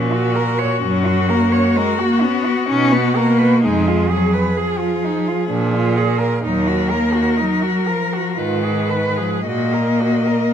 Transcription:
Already playing: A#2 F3 C#4 F#4
0.13 F#4
0.35 A#4
0.59 C#5
0.82 F#2 F#3 C#4
1.05 F#4
1.29 A#3 A#4
1.52 C#5
1.76 G#3 A#4
1.98 A#3 F#4
2.21 B3 C#4
2.45 F#4
2.69 B2 C#4 D#4
2.92 B3 F#4
3.16 A#3 A#4
3.38 B4
3.63 F2 G#3 D#4 G#4
3.87 F4
4.10 F#3 G#4
4.34 B4
4.57 F3 G#4
4.79 F4
5.04 D#4
5.28 F4
5.49 A#2 D4
5.74 F4
5.97 G#4
6.19 A#4
6.44 D#2 F#3 D#4 A#4
6.67 F#4
6.90 A#3 A#4
7.13 F#4
7.37 D#4
7.41 F#3
7.62 F#4
7.86 F3 A#4
8.13 F#4
8.37 G#2 D#3 F4 B4
8.63 G#4
8.89 B4
9.17 F3 G#4
9.46 A#2 A#3 F#4 D#5
9.73 A#4
10.00 F#4
10.26 A#4

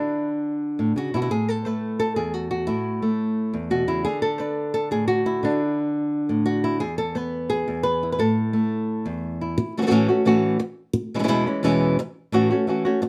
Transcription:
Already playing: D3 D4 E4 F#4
0.79 A2
0.96 C#3 F#4
1.14 B2 E4 F#4
1.22 E4
1.31 A2 G#4
1.48 A4
1.65 A3 B4
2.00 A4
2.16 E2 G#4
2.34 F#4
2.51 F#4
2.67 A2 E4
3.02 A3
3.53 E2
3.70 B2 F#4
3.88 C#3 E4
4.05 D3 G#4
4.22 A4
4.38 D4 B4
4.74 A4
4.91 A2 G#4
5.08 F#4
5.26 E4
5.43 D3 D4
6.29 A2
6.46 F#4
6.64 E4
6.80 E2 G#4
6.98 A4
7.15 B3 B4
7.50 G#4
7.68 E2
7.83 B4
8.03 E4
8.12 B4
8.19 A2 A4
8.53 A3
9.06 E2
9.41 E4
9.58 muted nylon-string guitar stroke
9.77 E3 A3 C#4 F#4
9.82 E3 A3 C#4 F#4
9.87 A2 E3 A3 C#4 F#4
9.91 E3 A3 C#4 F#4
10.08 A3 C#4 F#4
10.25 A2 E3 A3 C#4 F#4
10.59 muted nylon-string guitar stroke
10.93 muted nylon-string guitar stroke
11.14 B2 E3 G#3 C#4 E4
11.19 B2 E3 G#3 C#4 E4
11.23 B2 E3 G#3 C#4 E4
11.28 E2 B2 E3 G#3 C#4 E4
11.46 E3 G#3 C#4 E4
11.63 E2 B2 E3 G#3 C#4 E4
11.99 muted nylon-string guitar stroke
12.32 A2 E3 A3 C#4 F#4
12.50 A3 C#4 F#4
12.67 E3 A3 C#4 F#4
12.85 A3 C#4 F#4
13.02 muted nylon-string guitar stroke

